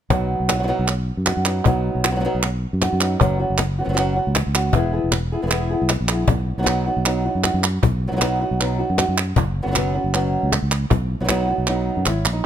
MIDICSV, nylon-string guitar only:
0, 0, Header, 1, 3, 480
1, 0, Start_track
1, 0, Key_signature, 5, "major"
1, 0, Tempo, 385604
1, 143, Time_signature, 4, 2, 24, 8
1, 15508, End_track
2, 0, Start_track
2, 0, Title_t, "Nylon-string guitar"
2, 0, Program_c, 0, 24
2, 127, Note_on_c, 0, 47, 74
2, 131, Note_on_c, 0, 54, 75
2, 140, Note_on_c, 0, 59, 72
2, 151, Note_on_c, 0, 63, 71
2, 151, Note_on_c, 0, 66, 82
2, 584, Note_off_c, 0, 66, 0
2, 599, Note_on_c, 0, 66, 44
2, 603, Note_off_c, 0, 63, 0
2, 605, Note_off_c, 0, 47, 0
2, 607, Note_off_c, 0, 54, 0
2, 611, Note_off_c, 0, 59, 0
2, 618, Note_on_c, 0, 63, 44
2, 627, Note_on_c, 0, 59, 41
2, 724, Note_off_c, 0, 59, 0
2, 725, Note_off_c, 0, 63, 0
2, 728, Note_off_c, 0, 66, 0
2, 731, Note_on_c, 0, 54, 48
2, 739, Note_on_c, 0, 59, 46
2, 740, Note_on_c, 0, 63, 49
2, 743, Note_on_c, 0, 66, 60
2, 771, Note_off_c, 0, 54, 0
2, 776, Note_off_c, 0, 59, 0
2, 784, Note_off_c, 0, 66, 0
2, 785, Note_off_c, 0, 63, 0
2, 786, Note_on_c, 0, 54, 63
2, 791, Note_on_c, 0, 59, 61
2, 799, Note_on_c, 0, 66, 63
2, 800, Note_on_c, 0, 63, 63
2, 828, Note_off_c, 0, 54, 0
2, 833, Note_off_c, 0, 59, 0
2, 841, Note_off_c, 0, 63, 0
2, 843, Note_off_c, 0, 66, 0
2, 843, Note_on_c, 0, 54, 79
2, 847, Note_on_c, 0, 47, 70
2, 848, Note_on_c, 0, 59, 71
2, 856, Note_on_c, 0, 63, 77
2, 858, Note_on_c, 0, 66, 78
2, 1083, Note_off_c, 0, 54, 0
2, 1085, Note_off_c, 0, 47, 0
2, 1085, Note_off_c, 0, 59, 0
2, 1089, Note_off_c, 0, 63, 0
2, 1090, Note_off_c, 0, 66, 0
2, 1577, Note_on_c, 0, 66, 53
2, 1588, Note_on_c, 0, 63, 48
2, 1600, Note_on_c, 0, 59, 43
2, 1809, Note_off_c, 0, 66, 0
2, 1811, Note_off_c, 0, 59, 0
2, 1815, Note_off_c, 0, 63, 0
2, 1817, Note_on_c, 0, 54, 45
2, 1826, Note_on_c, 0, 59, 42
2, 1836, Note_on_c, 0, 63, 49
2, 1840, Note_on_c, 0, 66, 50
2, 2049, Note_off_c, 0, 54, 0
2, 2054, Note_off_c, 0, 59, 0
2, 2059, Note_off_c, 0, 63, 0
2, 2059, Note_on_c, 0, 47, 66
2, 2061, Note_off_c, 0, 66, 0
2, 2064, Note_on_c, 0, 54, 73
2, 2075, Note_on_c, 0, 59, 74
2, 2075, Note_on_c, 0, 63, 77
2, 2081, Note_on_c, 0, 66, 82
2, 2527, Note_off_c, 0, 66, 0
2, 2530, Note_off_c, 0, 47, 0
2, 2533, Note_off_c, 0, 54, 0
2, 2538, Note_off_c, 0, 59, 0
2, 2538, Note_off_c, 0, 63, 0
2, 2542, Note_on_c, 0, 66, 51
2, 2556, Note_on_c, 0, 63, 47
2, 2574, Note_on_c, 0, 59, 48
2, 2617, Note_off_c, 0, 59, 0
2, 2622, Note_off_c, 0, 63, 0
2, 2625, Note_off_c, 0, 66, 0
2, 2626, Note_on_c, 0, 54, 53
2, 2632, Note_on_c, 0, 59, 55
2, 2637, Note_on_c, 0, 63, 50
2, 2640, Note_on_c, 0, 66, 55
2, 2670, Note_off_c, 0, 54, 0
2, 2675, Note_off_c, 0, 59, 0
2, 2676, Note_off_c, 0, 63, 0
2, 2682, Note_off_c, 0, 66, 0
2, 2685, Note_on_c, 0, 54, 58
2, 2690, Note_on_c, 0, 59, 52
2, 2691, Note_on_c, 0, 63, 62
2, 2696, Note_on_c, 0, 66, 67
2, 2726, Note_off_c, 0, 54, 0
2, 2728, Note_off_c, 0, 59, 0
2, 2733, Note_off_c, 0, 63, 0
2, 2739, Note_off_c, 0, 66, 0
2, 2741, Note_on_c, 0, 54, 66
2, 2743, Note_on_c, 0, 59, 71
2, 2748, Note_on_c, 0, 63, 67
2, 2754, Note_on_c, 0, 66, 73
2, 2783, Note_off_c, 0, 54, 0
2, 2788, Note_off_c, 0, 59, 0
2, 2791, Note_off_c, 0, 63, 0
2, 2796, Note_off_c, 0, 66, 0
2, 2796, Note_on_c, 0, 47, 72
2, 2798, Note_on_c, 0, 54, 78
2, 2803, Note_on_c, 0, 59, 68
2, 2806, Note_on_c, 0, 63, 85
2, 2811, Note_on_c, 0, 66, 84
2, 3018, Note_off_c, 0, 47, 0
2, 3019, Note_off_c, 0, 54, 0
2, 3022, Note_off_c, 0, 59, 0
2, 3023, Note_off_c, 0, 63, 0
2, 3026, Note_off_c, 0, 66, 0
2, 3504, Note_on_c, 0, 66, 51
2, 3520, Note_on_c, 0, 63, 39
2, 3535, Note_on_c, 0, 59, 40
2, 3730, Note_off_c, 0, 59, 0
2, 3733, Note_off_c, 0, 66, 0
2, 3739, Note_on_c, 0, 54, 46
2, 3740, Note_off_c, 0, 63, 0
2, 3744, Note_on_c, 0, 59, 50
2, 3754, Note_on_c, 0, 63, 54
2, 3765, Note_on_c, 0, 66, 46
2, 3970, Note_off_c, 0, 54, 0
2, 3973, Note_off_c, 0, 59, 0
2, 3978, Note_off_c, 0, 63, 0
2, 3982, Note_on_c, 0, 47, 71
2, 3983, Note_off_c, 0, 66, 0
2, 3996, Note_on_c, 0, 54, 77
2, 3996, Note_on_c, 0, 59, 76
2, 4002, Note_on_c, 0, 61, 84
2, 4009, Note_on_c, 0, 66, 80
2, 4211, Note_off_c, 0, 66, 0
2, 4212, Note_off_c, 0, 47, 0
2, 4218, Note_off_c, 0, 54, 0
2, 4218, Note_off_c, 0, 59, 0
2, 4221, Note_off_c, 0, 61, 0
2, 4226, Note_on_c, 0, 66, 56
2, 4239, Note_on_c, 0, 61, 45
2, 4253, Note_on_c, 0, 59, 44
2, 4453, Note_off_c, 0, 66, 0
2, 4457, Note_off_c, 0, 61, 0
2, 4458, Note_off_c, 0, 59, 0
2, 4713, Note_on_c, 0, 66, 54
2, 4727, Note_on_c, 0, 61, 46
2, 4737, Note_on_c, 0, 59, 43
2, 4775, Note_off_c, 0, 59, 0
2, 4785, Note_off_c, 0, 61, 0
2, 4785, Note_off_c, 0, 66, 0
2, 4786, Note_on_c, 0, 54, 42
2, 4790, Note_on_c, 0, 59, 44
2, 4800, Note_on_c, 0, 61, 54
2, 4800, Note_on_c, 0, 66, 51
2, 4827, Note_off_c, 0, 54, 0
2, 4832, Note_off_c, 0, 59, 0
2, 4836, Note_off_c, 0, 61, 0
2, 4841, Note_off_c, 0, 66, 0
2, 4842, Note_on_c, 0, 54, 58
2, 4847, Note_on_c, 0, 59, 66
2, 4851, Note_on_c, 0, 61, 57
2, 4856, Note_on_c, 0, 66, 63
2, 4881, Note_off_c, 0, 54, 0
2, 4891, Note_off_c, 0, 59, 0
2, 4893, Note_off_c, 0, 61, 0
2, 4896, Note_on_c, 0, 54, 64
2, 4898, Note_off_c, 0, 66, 0
2, 4906, Note_on_c, 0, 59, 58
2, 4908, Note_on_c, 0, 61, 75
2, 4913, Note_on_c, 0, 66, 69
2, 4945, Note_off_c, 0, 54, 0
2, 4946, Note_off_c, 0, 59, 0
2, 4949, Note_off_c, 0, 66, 0
2, 4953, Note_off_c, 0, 61, 0
2, 4954, Note_on_c, 0, 47, 67
2, 4960, Note_on_c, 0, 54, 77
2, 4961, Note_on_c, 0, 59, 74
2, 4964, Note_on_c, 0, 66, 85
2, 4968, Note_on_c, 0, 61, 78
2, 5169, Note_off_c, 0, 66, 0
2, 5178, Note_off_c, 0, 47, 0
2, 5181, Note_off_c, 0, 54, 0
2, 5181, Note_off_c, 0, 59, 0
2, 5183, Note_on_c, 0, 66, 48
2, 5184, Note_off_c, 0, 61, 0
2, 5200, Note_on_c, 0, 61, 42
2, 5206, Note_on_c, 0, 59, 37
2, 5413, Note_off_c, 0, 66, 0
2, 5419, Note_off_c, 0, 59, 0
2, 5421, Note_off_c, 0, 61, 0
2, 5662, Note_on_c, 0, 66, 49
2, 5680, Note_on_c, 0, 61, 37
2, 5688, Note_on_c, 0, 59, 36
2, 5892, Note_off_c, 0, 66, 0
2, 5897, Note_off_c, 0, 59, 0
2, 5901, Note_off_c, 0, 61, 0
2, 5901, Note_on_c, 0, 52, 69
2, 5912, Note_on_c, 0, 59, 76
2, 5918, Note_on_c, 0, 64, 77
2, 5922, Note_on_c, 0, 68, 70
2, 6122, Note_off_c, 0, 68, 0
2, 6132, Note_off_c, 0, 52, 0
2, 6137, Note_off_c, 0, 59, 0
2, 6137, Note_on_c, 0, 68, 53
2, 6141, Note_off_c, 0, 64, 0
2, 6156, Note_on_c, 0, 64, 50
2, 6160, Note_on_c, 0, 59, 45
2, 6370, Note_off_c, 0, 68, 0
2, 6371, Note_off_c, 0, 59, 0
2, 6373, Note_off_c, 0, 64, 0
2, 6625, Note_on_c, 0, 68, 47
2, 6642, Note_on_c, 0, 64, 42
2, 6652, Note_on_c, 0, 59, 42
2, 6739, Note_off_c, 0, 59, 0
2, 6743, Note_off_c, 0, 64, 0
2, 6749, Note_off_c, 0, 68, 0
2, 6749, Note_on_c, 0, 52, 41
2, 6754, Note_on_c, 0, 59, 49
2, 6758, Note_on_c, 0, 64, 48
2, 6764, Note_on_c, 0, 68, 52
2, 6793, Note_off_c, 0, 52, 0
2, 6795, Note_off_c, 0, 59, 0
2, 6800, Note_off_c, 0, 64, 0
2, 6807, Note_off_c, 0, 68, 0
2, 6808, Note_on_c, 0, 52, 51
2, 6810, Note_on_c, 0, 59, 57
2, 6815, Note_on_c, 0, 64, 60
2, 6822, Note_on_c, 0, 68, 67
2, 6845, Note_off_c, 0, 52, 0
2, 6854, Note_off_c, 0, 64, 0
2, 6855, Note_off_c, 0, 59, 0
2, 6860, Note_on_c, 0, 52, 68
2, 6866, Note_off_c, 0, 68, 0
2, 6869, Note_on_c, 0, 64, 70
2, 6870, Note_on_c, 0, 59, 72
2, 6881, Note_on_c, 0, 68, 73
2, 7088, Note_off_c, 0, 68, 0
2, 7092, Note_off_c, 0, 52, 0
2, 7097, Note_off_c, 0, 59, 0
2, 7097, Note_off_c, 0, 64, 0
2, 7103, Note_on_c, 0, 68, 47
2, 7112, Note_on_c, 0, 64, 46
2, 7127, Note_on_c, 0, 59, 38
2, 7334, Note_off_c, 0, 68, 0
2, 7339, Note_off_c, 0, 64, 0
2, 7346, Note_off_c, 0, 59, 0
2, 7597, Note_on_c, 0, 68, 43
2, 7612, Note_on_c, 0, 64, 33
2, 7622, Note_on_c, 0, 59, 33
2, 7821, Note_off_c, 0, 68, 0
2, 7829, Note_off_c, 0, 64, 0
2, 7834, Note_off_c, 0, 59, 0
2, 8192, Note_on_c, 0, 54, 45
2, 8195, Note_on_c, 0, 59, 50
2, 8206, Note_on_c, 0, 63, 49
2, 8206, Note_on_c, 0, 66, 57
2, 8233, Note_off_c, 0, 54, 0
2, 8235, Note_off_c, 0, 59, 0
2, 8245, Note_off_c, 0, 63, 0
2, 8248, Note_on_c, 0, 54, 61
2, 8250, Note_off_c, 0, 66, 0
2, 8250, Note_on_c, 0, 59, 68
2, 8260, Note_on_c, 0, 63, 68
2, 8265, Note_on_c, 0, 66, 68
2, 8295, Note_off_c, 0, 54, 0
2, 8299, Note_off_c, 0, 59, 0
2, 8300, Note_off_c, 0, 63, 0
2, 8300, Note_on_c, 0, 47, 74
2, 8302, Note_off_c, 0, 66, 0
2, 8310, Note_on_c, 0, 54, 72
2, 8314, Note_on_c, 0, 59, 78
2, 8315, Note_on_c, 0, 63, 78
2, 8317, Note_on_c, 0, 66, 87
2, 8526, Note_off_c, 0, 66, 0
2, 8534, Note_off_c, 0, 47, 0
2, 8539, Note_off_c, 0, 54, 0
2, 8541, Note_off_c, 0, 59, 0
2, 8541, Note_off_c, 0, 63, 0
2, 8541, Note_on_c, 0, 66, 52
2, 8559, Note_on_c, 0, 63, 40
2, 8563, Note_on_c, 0, 59, 45
2, 8774, Note_off_c, 0, 59, 0
2, 8775, Note_off_c, 0, 66, 0
2, 8779, Note_on_c, 0, 47, 73
2, 8784, Note_off_c, 0, 63, 0
2, 8786, Note_on_c, 0, 54, 73
2, 8789, Note_on_c, 0, 59, 67
2, 8799, Note_on_c, 0, 63, 78
2, 8802, Note_on_c, 0, 66, 78
2, 9010, Note_off_c, 0, 66, 0
2, 9014, Note_off_c, 0, 47, 0
2, 9017, Note_off_c, 0, 54, 0
2, 9019, Note_off_c, 0, 59, 0
2, 9019, Note_off_c, 0, 63, 0
2, 9025, Note_on_c, 0, 66, 45
2, 9034, Note_on_c, 0, 63, 39
2, 9046, Note_on_c, 0, 59, 38
2, 9245, Note_off_c, 0, 66, 0
2, 9258, Note_off_c, 0, 63, 0
2, 9260, Note_on_c, 0, 66, 46
2, 9268, Note_off_c, 0, 59, 0
2, 9273, Note_on_c, 0, 63, 45
2, 9282, Note_on_c, 0, 59, 41
2, 9484, Note_off_c, 0, 59, 0
2, 9486, Note_off_c, 0, 63, 0
2, 9489, Note_off_c, 0, 66, 0
2, 10051, Note_on_c, 0, 54, 50
2, 10054, Note_on_c, 0, 59, 50
2, 10060, Note_on_c, 0, 63, 53
2, 10068, Note_on_c, 0, 66, 50
2, 10088, Note_off_c, 0, 54, 0
2, 10099, Note_off_c, 0, 59, 0
2, 10103, Note_off_c, 0, 63, 0
2, 10103, Note_on_c, 0, 54, 56
2, 10105, Note_off_c, 0, 66, 0
2, 10114, Note_on_c, 0, 59, 59
2, 10118, Note_on_c, 0, 63, 66
2, 10120, Note_on_c, 0, 66, 67
2, 10149, Note_off_c, 0, 54, 0
2, 10153, Note_off_c, 0, 59, 0
2, 10161, Note_off_c, 0, 63, 0
2, 10164, Note_on_c, 0, 54, 67
2, 10165, Note_off_c, 0, 66, 0
2, 10168, Note_on_c, 0, 59, 61
2, 10176, Note_on_c, 0, 63, 74
2, 10180, Note_on_c, 0, 66, 81
2, 10207, Note_off_c, 0, 54, 0
2, 10214, Note_off_c, 0, 59, 0
2, 10216, Note_off_c, 0, 63, 0
2, 10218, Note_off_c, 0, 66, 0
2, 10220, Note_on_c, 0, 47, 68
2, 10222, Note_on_c, 0, 54, 72
2, 10229, Note_on_c, 0, 59, 80
2, 10231, Note_on_c, 0, 63, 83
2, 10233, Note_on_c, 0, 66, 81
2, 10452, Note_off_c, 0, 66, 0
2, 10455, Note_off_c, 0, 47, 0
2, 10456, Note_off_c, 0, 54, 0
2, 10460, Note_off_c, 0, 59, 0
2, 10460, Note_off_c, 0, 63, 0
2, 10467, Note_on_c, 0, 66, 50
2, 10480, Note_on_c, 0, 63, 47
2, 10493, Note_on_c, 0, 59, 40
2, 10699, Note_off_c, 0, 66, 0
2, 10703, Note_on_c, 0, 47, 71
2, 10705, Note_off_c, 0, 59, 0
2, 10705, Note_off_c, 0, 63, 0
2, 10713, Note_on_c, 0, 54, 71
2, 10720, Note_on_c, 0, 59, 71
2, 10725, Note_on_c, 0, 63, 64
2, 10734, Note_on_c, 0, 66, 71
2, 10925, Note_off_c, 0, 66, 0
2, 10937, Note_off_c, 0, 47, 0
2, 10939, Note_off_c, 0, 63, 0
2, 10940, Note_on_c, 0, 66, 48
2, 10942, Note_off_c, 0, 54, 0
2, 10946, Note_off_c, 0, 59, 0
2, 10954, Note_on_c, 0, 63, 45
2, 10968, Note_on_c, 0, 59, 39
2, 11171, Note_off_c, 0, 66, 0
2, 11182, Note_off_c, 0, 63, 0
2, 11186, Note_on_c, 0, 66, 51
2, 11189, Note_off_c, 0, 59, 0
2, 11201, Note_on_c, 0, 63, 46
2, 11214, Note_on_c, 0, 59, 38
2, 11418, Note_off_c, 0, 66, 0
2, 11421, Note_off_c, 0, 59, 0
2, 11426, Note_off_c, 0, 63, 0
2, 11979, Note_on_c, 0, 54, 48
2, 11984, Note_on_c, 0, 59, 59
2, 11987, Note_on_c, 0, 61, 53
2, 11990, Note_on_c, 0, 66, 47
2, 12016, Note_off_c, 0, 54, 0
2, 12023, Note_off_c, 0, 59, 0
2, 12030, Note_on_c, 0, 54, 53
2, 12035, Note_off_c, 0, 61, 0
2, 12037, Note_off_c, 0, 66, 0
2, 12038, Note_on_c, 0, 59, 56
2, 12050, Note_on_c, 0, 61, 64
2, 12052, Note_on_c, 0, 66, 61
2, 12076, Note_off_c, 0, 54, 0
2, 12083, Note_off_c, 0, 59, 0
2, 12089, Note_off_c, 0, 61, 0
2, 12091, Note_on_c, 0, 54, 65
2, 12094, Note_off_c, 0, 66, 0
2, 12097, Note_on_c, 0, 59, 64
2, 12104, Note_on_c, 0, 61, 70
2, 12109, Note_on_c, 0, 66, 77
2, 12135, Note_off_c, 0, 54, 0
2, 12137, Note_off_c, 0, 59, 0
2, 12139, Note_off_c, 0, 61, 0
2, 12146, Note_off_c, 0, 66, 0
2, 12147, Note_on_c, 0, 47, 72
2, 12150, Note_on_c, 0, 54, 79
2, 12152, Note_on_c, 0, 59, 86
2, 12153, Note_on_c, 0, 61, 87
2, 12161, Note_on_c, 0, 66, 79
2, 12366, Note_off_c, 0, 66, 0
2, 12377, Note_off_c, 0, 61, 0
2, 12379, Note_off_c, 0, 47, 0
2, 12380, Note_off_c, 0, 54, 0
2, 12381, Note_off_c, 0, 59, 0
2, 12381, Note_on_c, 0, 66, 52
2, 12392, Note_on_c, 0, 61, 46
2, 12404, Note_on_c, 0, 59, 44
2, 12614, Note_off_c, 0, 59, 0
2, 12615, Note_on_c, 0, 47, 74
2, 12616, Note_off_c, 0, 66, 0
2, 12620, Note_on_c, 0, 54, 77
2, 12621, Note_off_c, 0, 61, 0
2, 12629, Note_on_c, 0, 59, 67
2, 12638, Note_on_c, 0, 61, 69
2, 12640, Note_on_c, 0, 66, 72
2, 13092, Note_off_c, 0, 47, 0
2, 13094, Note_off_c, 0, 54, 0
2, 13099, Note_off_c, 0, 59, 0
2, 13100, Note_off_c, 0, 61, 0
2, 13105, Note_off_c, 0, 66, 0
2, 13947, Note_on_c, 0, 54, 48
2, 13948, Note_on_c, 0, 59, 53
2, 13958, Note_on_c, 0, 63, 44
2, 13961, Note_on_c, 0, 66, 59
2, 13981, Note_off_c, 0, 54, 0
2, 13990, Note_off_c, 0, 59, 0
2, 13996, Note_on_c, 0, 54, 60
2, 13997, Note_off_c, 0, 63, 0
2, 14001, Note_off_c, 0, 66, 0
2, 14005, Note_on_c, 0, 59, 75
2, 14012, Note_on_c, 0, 63, 65
2, 14016, Note_on_c, 0, 66, 71
2, 14045, Note_off_c, 0, 54, 0
2, 14050, Note_off_c, 0, 59, 0
2, 14051, Note_off_c, 0, 63, 0
2, 14057, Note_off_c, 0, 66, 0
2, 14057, Note_on_c, 0, 47, 76
2, 14060, Note_on_c, 0, 54, 75
2, 14065, Note_on_c, 0, 59, 82
2, 14066, Note_on_c, 0, 63, 90
2, 14072, Note_on_c, 0, 66, 77
2, 14273, Note_off_c, 0, 66, 0
2, 14288, Note_on_c, 0, 66, 53
2, 14292, Note_off_c, 0, 47, 0
2, 14293, Note_off_c, 0, 54, 0
2, 14293, Note_off_c, 0, 63, 0
2, 14296, Note_off_c, 0, 59, 0
2, 14308, Note_on_c, 0, 63, 45
2, 14319, Note_on_c, 0, 59, 38
2, 14527, Note_off_c, 0, 66, 0
2, 14531, Note_on_c, 0, 47, 59
2, 14533, Note_off_c, 0, 59, 0
2, 14537, Note_off_c, 0, 63, 0
2, 14543, Note_on_c, 0, 54, 66
2, 14548, Note_on_c, 0, 59, 69
2, 14554, Note_on_c, 0, 63, 80
2, 14563, Note_on_c, 0, 66, 80
2, 15008, Note_off_c, 0, 47, 0
2, 15011, Note_off_c, 0, 59, 0
2, 15014, Note_off_c, 0, 54, 0
2, 15016, Note_off_c, 0, 63, 0
2, 15024, Note_off_c, 0, 66, 0
2, 15032, Note_on_c, 0, 64, 73
2, 15344, Note_off_c, 0, 64, 0
2, 15349, Note_on_c, 0, 63, 81
2, 15508, Note_off_c, 0, 63, 0
2, 15508, End_track
3, 0, Start_track
3, 0, Title_t, "Muted nylon-string guitar strokes"
3, 1098, Note_on_c, 9, 29, 65
3, 1222, Note_off_c, 9, 29, 0
3, 3040, Note_on_c, 9, 29, 64
3, 3164, Note_off_c, 9, 29, 0
3, 4468, Note_on_c, 9, 29, 65
3, 4592, Note_off_c, 9, 29, 0
3, 5427, Note_on_c, 9, 29, 57
3, 5552, Note_off_c, 9, 29, 0
3, 6376, Note_on_c, 9, 29, 64
3, 6501, Note_off_c, 9, 29, 0
3, 7354, Note_on_c, 9, 29, 59
3, 7479, Note_off_c, 9, 29, 0
3, 7839, Note_on_c, 9, 29, 66
3, 7963, Note_off_c, 9, 29, 0
3, 9492, Note_on_c, 9, 29, 51
3, 9617, Note_off_c, 9, 29, 0
3, 9748, Note_on_c, 9, 29, 74
3, 9872, Note_off_c, 9, 29, 0
3, 11427, Note_on_c, 9, 29, 57
3, 11551, Note_off_c, 9, 29, 0
3, 11672, Note_on_c, 9, 29, 73
3, 11797, Note_off_c, 9, 29, 0
3, 13108, Note_on_c, 9, 29, 64
3, 13233, Note_off_c, 9, 29, 0
3, 13577, Note_on_c, 9, 29, 68
3, 13702, Note_off_c, 9, 29, 0
3, 15024, Note_on_c, 9, 29, 53
3, 15148, Note_off_c, 9, 29, 0
3, 15508, End_track
0, 0, End_of_file